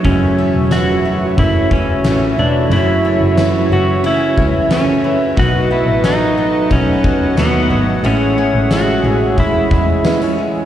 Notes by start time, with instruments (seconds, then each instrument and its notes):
Already playing: twelve-string acoustic guitar F#3 A3 D#4, analog synth pad F#4
0.02 double bass F#1, clean electric guitar F#2 C#3, twelve-string acoustic guitar F#2, pedal steel guitar C#4, analog synth pad C#5 E5, kick, ride
0.06 clean electric guitar E3 A3
0.10 clean electric guitar C#4
0.38 twelve-string acoustic guitar A3
0.54 double bass E1
0.71 twelve-string acoustic guitar E3, pedal steel guitar F#4, snare, ride, tambourine
1.05 twelve-string acoustic guitar A3
1.37 double bass F#1, clean electric guitar C#3 E3 A3, pedal steel guitar E4, kick, ride
1.42 clean electric guitar C#4
1.71 twelve-string acoustic guitar E3, pedal steel guitar C#4, kick
2.04 double bass A1, clean electric guitar E3 A3, twelve-string acoustic guitar A3, snare, ride, tambourine
2.38 double bass E1, twelve-string acoustic guitar E3, pedal steel guitar D4
2.68 double bass F#1, clean electric guitar F#2 C#3, twelve-string acoustic guitar F#2, ride
2.73 clean electric guitar E3 A3, pedal steel guitar E4
2.77 clean electric guitar C#4
3.05 twelve-string acoustic guitar A3
3.21 double bass F#1
3.38 twelve-string acoustic guitar E3, snare, ride, tambourine
3.70 double bass F#1, twelve-string acoustic guitar A3, pedal steel guitar F#4
4.03 clean electric guitar C#3 E3 A3, twelve-string acoustic guitar C#4, pedal steel guitar E4, ride
4.08 clean electric guitar C#4
4.37 double bass C#2, twelve-string acoustic guitar E3, kick
4.69 clean electric guitar C#3 E3, twelve-string acoustic guitar A3, pedal steel guitar C#4, snare, ride, tambourine
4.73 clean electric guitar A3 C#4
5.04 twelve-string acoustic guitar E3
5.36 double bass B1, clean electric guitar B2 F#3 A3 D#4, twelve-string acoustic guitar B2, pedal steel guitar F#4, analog synth pad B4 D#5 F#5, kick, ride
5.71 twelve-string acoustic guitar A3, clean electric guitar A3, pedal steel guitar E4
5.75 clean electric guitar F#3
5.87 double bass A1
6.04 twelve-string acoustic guitar F#3, pedal steel guitar D#4, snare, ride, tambourine
6.37 twelve-string acoustic guitar A3
6.70 double bass B1, clean electric guitar B2 F#3 A3, pedal steel guitar C#4, twelve-string acoustic guitar D#4, kick, ride
6.75 clean electric guitar D#4
7.04 twelve-string acoustic guitar F#3, kick
7.37 double bass D#2, clean electric guitar B2 F#3 A3, twelve-string acoustic guitar A3, pedal steel guitar B3, snare, ride, tambourine
7.42 clean electric guitar D#4
7.70 double bass G#1, twelve-string acoustic guitar F#3
8.03 double bass A1, clean electric guitar A2 E3 G#3 C#4 E4, twelve-string acoustic guitar A2, pedal steel guitar C#4, analog synth pad G#4 C#5 E5, ride
8.36 twelve-string acoustic guitar C#4, clean electric guitar C#4 E4
8.42 clean electric guitar G#3
8.54 double bass A1
8.71 twelve-string acoustic guitar G#3, pedal steel guitar F#4, snare, ride, tambourine
9.04 double bass A1, twelve-string acoustic guitar C#4
9.36 clean electric guitar E3 G#3, twelve-string acoustic guitar E4, pedal steel guitar E4, kick, ride
9.40 clean electric guitar C#4 E4
9.71 double bass E2, twelve-string acoustic guitar G#3, kick
10.03 clean electric guitar E3 G#3 C#4, twelve-string acoustic guitar B3, snare, ride, tambourine
10.09 clean electric guitar E4
10.22 twelve-string acoustic guitar C#4
10.38 twelve-string acoustic guitar G#3